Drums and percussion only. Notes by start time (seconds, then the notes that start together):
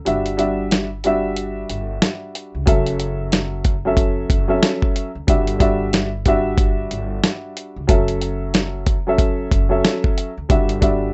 0.06 closed hi-hat
0.26 closed hi-hat
0.39 closed hi-hat
0.71 snare, closed hi-hat
1.04 closed hi-hat
1.36 closed hi-hat
1.70 closed hi-hat
2.02 snare, closed hi-hat
2.35 closed hi-hat
2.67 kick, closed hi-hat
2.86 closed hi-hat
3.00 closed hi-hat
3.32 snare, closed hi-hat
3.65 kick, closed hi-hat
3.97 kick, closed hi-hat
4.30 kick, closed hi-hat
4.63 snare, closed hi-hat
4.82 kick
4.96 closed hi-hat
5.28 kick, closed hi-hat
5.47 closed hi-hat
5.60 kick, closed hi-hat
5.93 snare, closed hi-hat
6.26 kick, closed hi-hat
6.58 kick, closed hi-hat
6.91 closed hi-hat
7.24 snare, closed hi-hat
7.57 closed hi-hat
7.89 kick, closed hi-hat
8.08 closed hi-hat
8.21 closed hi-hat
8.54 snare, closed hi-hat
8.86 kick, closed hi-hat
9.18 kick, closed hi-hat
9.52 kick, closed hi-hat
9.85 snare, closed hi-hat
10.04 kick
10.18 closed hi-hat
10.50 kick, closed hi-hat
10.69 closed hi-hat
10.82 kick, closed hi-hat